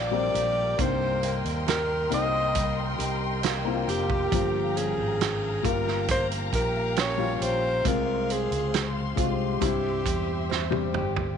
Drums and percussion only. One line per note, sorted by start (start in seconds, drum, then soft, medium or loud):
0.35 closed hi-hat medium
0.79 kick loud
0.79 closed hi-hat medium
1.23 closed hi-hat medium
1.45 closed hi-hat soft
1.68 snare medium
1.68 closed hi-hat medium
2.12 closed hi-hat medium
2.55 kick medium
2.55 closed hi-hat medium
3.00 closed hi-hat medium
3.43 snare medium
3.43 closed hi-hat medium
3.89 closed hi-hat medium
4.10 kick medium
4.32 kick loud
4.32 closed hi-hat medium
4.77 closed hi-hat medium
5.21 snare medium
5.21 closed hi-hat medium
5.64 kick medium
5.64 closed hi-hat medium
5.88 snare soft
6.08 kick medium
6.08 closed hi-hat medium
6.31 closed hi-hat medium
6.53 kick medium
6.53 closed hi-hat medium
6.96 snare loud
6.96 closed hi-hat medium
7.42 closed hi-hat medium
7.85 kick loud
7.85 closed hi-hat medium
8.30 closed hi-hat medium
8.52 closed hi-hat soft
8.74 snare medium
8.74 closed hi-hat medium
9.17 kick medium
9.17 closed hi-hat medium
9.62 kick medium
9.62 closed hi-hat medium
10.06 kick medium
10.06 closed hi-hat medium
10.51 snare medium
10.72 high tom medium
10.94 mid tom medium
11.16 floor tom medium